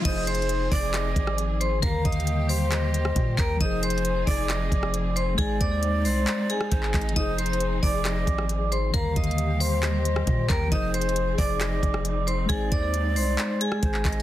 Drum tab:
CC |x-----------------------------------------------|------------------------------------------------|------------------------------------------------|------------------------------------------------|
HH |x-----x-x-x-x-----o-----x-----x-----x-----x-----|x-----x-x-x-x-----o-----x-----x-----x-----x-----|x-----x-x-x-x-----o-----x-----x-----x-----x-----|x-----x-----x-----o-----x-----x-----x-----x-x-x-|
CP |------------------------x-----------------------|------------------------x-----------------x-----|------------------------x-----------------------|------------------------x--------------x--x-----|
SD |------------------------r--------r--------------|------------------------r--------r--------------|------------------------r--------r--------------|---------------------------------r--------------|
BD |o-----------------o-----------o-----------------|o-----o-----------------------------o-----o-----|o-----------------o-----------o-----------------|o-----o-----------------------------o-----o-----|

CC |------------------------------------------------|------------------------------------------------|------------------------------------------------|------------------------------------------------|
HH |x-----x-x-x-x-----o-----x-----x-----x-----x-----|x-----x-x-x-x-----o-----x-----x-----x-----x-----|x-----x-x-x-x-----o-----x-----x-----x-----x-----|x-----x-----x-----o-----x-----x-----x-----x-x---|
CP |------------------------x-----------------------|------------------------x-----------------x-----|------------------------x-----------------------|------------------------x--------------x--x-----|
SD |------------------------r--------r--------------|------------------------r--------r--------------|------------------------r--------r--------------|---------------------------------r--------------|
BD |o-----------------o-----------o-----------------|o-----o-----------------------------o-----o-----|o-----------------o-----------o-----------------|o-----o-----------------------------o-----o-----|